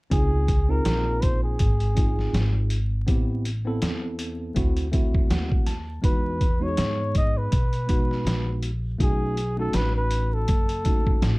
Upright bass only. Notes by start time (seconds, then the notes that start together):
0.11 C#2
0.85 A#1
1.60 G#1
2.33 G#1
3.08 A1
3.82 E2
4.56 D2
5.30 D#2
6.04 E2
6.78 G#2
7.53 B2
8.25 A#1
9.00 B1
9.74 A1
10.49 F#1
11.22 A1